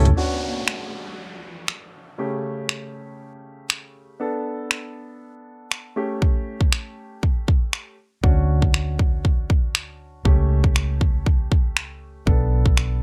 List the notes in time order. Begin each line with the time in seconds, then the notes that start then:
Already playing: C#2 C#3 A3 G4
0.05 A3, closed hi-hat, floor tom
0.16 C#4 D4 F#4, downlifter
0.68 finger snap
1.68 finger snap
2.18 C#3 A3 C#4 G4
2.69 finger snap
3.70 finger snap
4.20 B3 D4 A4
4.71 finger snap
5.72 finger snap
5.96 A3 C#4 G4
6.22 kick
6.61 kick
6.72 finger snap
7.23 kick
7.48 kick
7.73 finger snap
8.23 D2 C#4 D4 F#4, kick
8.62 kick
8.74 finger snap
8.99 kick
9.25 kick
9.50 kick
9.75 finger snap
10.25 C#2 A3 C#4 G4, kick
10.64 kick
10.76 finger snap
11.01 kick
11.26 kick
11.52 kick
11.77 finger snap
12.26 B1 B3 D4 A4, kick
12.66 kick
12.77 finger snap